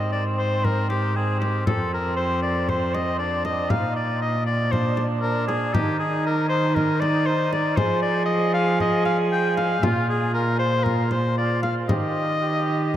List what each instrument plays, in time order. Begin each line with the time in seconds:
Already playing: cello G#2, cor anglais C4, oboe D#5
0.12 oboe D5
0.38 oboe C5
0.65 oboe A#4, frame drum
0.89 oboe G4, frame drum
1.15 cor anglais C4, oboe G#4
1.39 oboe G4, frame drum
1.66 cello F2, cor anglais C4, oboe A4, frame drum
1.94 oboe A#4
2.16 oboe C5
2.42 oboe D5
2.69 cor anglais C4, oboe C5, frame drum
2.94 oboe D#5, frame drum
3.19 cor anglais D4, oboe D5
3.45 oboe D#5, frame drum
3.70 cello A#2, cor anglais D#4, oboe F5, frame drum
3.96 oboe D5
4.22 oboe D#5
4.46 oboe D5
4.72 cor anglais D4, oboe C5, frame drum
4.97 frame drum
5.21 cor anglais D4, oboe A#4
5.47 oboe G#4, frame drum
5.73 cello D#3, cor anglais D#4, oboe G4, frame drum
5.99 oboe G#4
6.26 oboe A#4
6.49 oboe C5
6.75 cor anglais D#4, oboe A#4, frame drum
7.00 oboe D5, frame drum
7.26 oboe C5
7.53 oboe D5, frame drum
7.76 cello F3, cor anglais G#4, oboe C5, frame drum
8.02 oboe D5
8.26 oboe D#5
8.54 oboe F5
8.80 oboe D#5, frame drum
9.05 oboe F5, frame drum
9.32 oboe G5
9.57 oboe F5, frame drum
9.83 cello A#2, cor anglais F4, oboe F4, frame drum
10.10 oboe G#4
10.34 oboe A#4
10.59 oboe C5
10.83 cor anglais F4, oboe A#4, frame drum
11.11 oboe C5, frame drum
11.36 cor anglais F4, oboe D5
11.63 oboe F5, frame drum
11.89 cello D#3, cor anglais G4, oboe D#5, frame drum
12.42 cor anglais G4